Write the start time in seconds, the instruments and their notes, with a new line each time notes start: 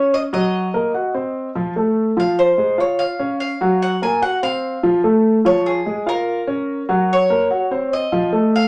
Already playing: grand piano C#4 C#5, cuban tres C#5
0.14 cuban tres D#5
0.33 grand piano F#3 F#4, cuban tres D#5
0.74 grand piano A#3 A#4
0.94 grand piano F#4 F#5
1.14 grand piano C4 C5
1.55 grand piano F3 F4
1.76 grand piano A3 A4
2.17 grand piano F3 F4, cuban tres F5
2.39 cuban tres C5
2.58 grand piano G#3 G#4
2.78 grand piano F4 F5, cuban tres C#5
2.99 cuban tres F5
3.19 grand piano C#4 C#5
3.40 cuban tres F5
3.61 grand piano F#3 F#4
3.82 cuban tres F#5
4.02 grand piano A#3 A#4, cuban tres G#5
4.22 grand piano F#4 F#5, cuban tres F#5
4.43 grand piano C4 C5, cuban tres F5
4.83 grand piano F3 F4
5.04 grand piano A3 A4
5.45 grand piano F3 F4, cuban tres C#5
5.66 cuban tres G#4
5.86 grand piano G#3 G#4
6.06 grand piano F4 F5, cuban tres A#4
6.47 grand piano C#4 C#5
6.89 grand piano F#3 F#4
7.13 cuban tres C#5
7.30 grand piano A#3 A#4
7.50 grand piano F#4 F#5
7.71 grand piano C4 C5
7.93 cuban tres D#5
8.12 grand piano F3 F4
8.33 grand piano A3 A4
8.56 cuban tres F5